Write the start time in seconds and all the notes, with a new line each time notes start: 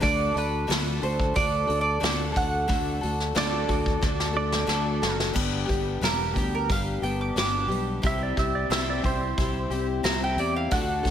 0.00 D2 D3 A3 D4 F#4 A4 D5, kick, open hi-hat
0.34 D2 D4 F#4 A4 B4, open hi-hat
0.67 D2 D3 A3 D4 F#4 A4, snare, open hi-hat
1.02 D2 D4 F#4 A4 C5, open hi-hat
1.20 kick
1.34 D2 A3 D4 F#4 A4 D5, kick, open hi-hat
1.67 D2 D4 F#4 A4, open hi-hat
1.81 D5
2.00 D2 D3 A3 D4 F#4 A4, snare, open hi-hat
2.32 D4 F#4 A4, open hi-hat
2.36 D2 F#5, kick
2.68 D2 D3 A3 D4 F#4 A4, kick, open hi-hat
3.01 D2 D4 F#4 A4, open hi-hat
3.20 snare
3.35 D2 D3 A3 D4 F#4 A4 D5, snare, open hi-hat
3.68 D2 D4 F#4 A4, kick, open hi-hat
3.86 kick
4.01 D2 A3 D4 F#4 A4, kick, snare
4.20 snare
4.33 D4 F#4 A4 D5
4.52 snare
4.67 D2 D3 A3 D4 F#4 A4, snare
5.02 F#1 D4 F#4 A4, snare
5.20 snare
5.33 G1 G2 D3 G3 B3 D4 G4, kick, crash
5.66 G1 G3 B3 D4 G4, kick, open hi-hat
6.01 E1 G2 D3 G3 B3 D4 G4 A#4, snare, open hi-hat
6.34 D2 G3 B3 D4 G4, kick, open hi-hat
6.38 G4
6.55 A#4
6.69 G1 G3 B3 D4 G4 F5, kick, open hi-hat
7.02 G1 G3 B3 D4 G4 G5, open hi-hat
7.21 D6
7.35 G1 G2 D3 G3 B3 D4 G4 D6, snare, open hi-hat
7.67 B1 G3 B3 D4 G4
7.71 open hi-hat
8.02 C2 C3 G3 C4 E4 G4, kick, open hi-hat
8.06 E5
8.23 D5
8.37 C2 C4 E4 G4 E5, kick, snare, open hi-hat
8.55 D5
8.69 C2 C3 G3 C4 E4 G4 E5, snare, open hi-hat
8.90 D5
9.03 C2 C4 E4 G4 C5, kick, open hi-hat
9.37 C2 G3 C4 E4 G4, kick, open hi-hat
9.70 C2 C4 E4 G4, open hi-hat
10.03 C2 C3 G3 C4 E4 G4 A#5, snare, open hi-hat
10.24 G5
10.36 E2 E4 G4 D5, open hi-hat
10.40 C4
10.56 F5
10.69 D2 D3 A3 D4 F#4 F#5, kick, open hi-hat
10.73 F#4 A4
11.03 D2 D4 F#4 A4, kick, snare, open hi-hat